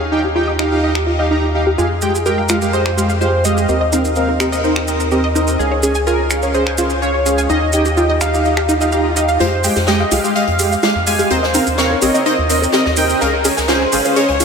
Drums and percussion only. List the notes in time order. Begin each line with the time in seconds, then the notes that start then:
0.59 finger snap
0.95 finger snap
1.79 maracas
2.02 maracas
2.15 maracas
2.26 maracas
2.49 finger snap, maracas
2.62 maracas
2.73 maracas
2.86 finger snap
2.98 maracas
3.10 maracas
3.21 maracas
3.45 maracas
3.57 maracas
3.69 maracas
3.93 maracas
4.05 maracas
4.16 maracas
4.40 finger snap, maracas
4.53 maracas
4.64 maracas
4.76 finger snap
4.88 maracas
5.00 maracas
5.11 maracas
5.36 maracas
5.47 maracas
5.60 maracas
5.83 maracas
5.95 maracas
6.07 maracas
6.30 finger snap, maracas
6.42 maracas
6.54 maracas
6.67 finger snap
6.78 maracas
6.90 maracas
7.02 maracas
7.26 maracas
7.38 maracas
7.50 maracas
7.73 maracas
7.85 maracas
7.97 maracas
8.21 finger snap, maracas
8.34 maracas
8.45 maracas
8.57 finger snap
8.69 maracas
8.81 maracas
8.92 maracas
9.17 maracas
9.28 maracas
9.40 closed hi-hat, maracas
9.64 closed hi-hat, open hi-hat, maracas
9.76 snare, maracas
9.87 snare, closed hi-hat, maracas
10.11 closed hi-hat, open hi-hat, maracas
10.24 maracas
10.36 closed hi-hat, maracas
10.47 closed hi-hat
10.59 closed hi-hat, open hi-hat, maracas
10.72 maracas
10.82 snare, closed hi-hat, maracas
11.07 closed hi-hat, open hi-hat, maracas
11.19 maracas
11.30 closed hi-hat, maracas
11.43 snare
11.54 closed hi-hat, open hi-hat, maracas
11.66 maracas
11.78 snare, closed hi-hat, maracas
12.02 closed hi-hat, open hi-hat, maracas
12.15 maracas
12.26 closed hi-hat, maracas
12.50 closed hi-hat, open hi-hat, maracas
12.63 maracas
12.72 snare, closed hi-hat, maracas
12.85 snare
12.97 closed hi-hat, open hi-hat, maracas
13.10 maracas
13.21 closed hi-hat, maracas
13.45 closed hi-hat, open hi-hat, maracas
13.57 snare, maracas
13.68 snare, closed hi-hat, maracas
13.92 closed hi-hat, open hi-hat, maracas
14.05 maracas
14.16 closed hi-hat, maracas
14.28 closed hi-hat
14.40 closed hi-hat, open hi-hat, maracas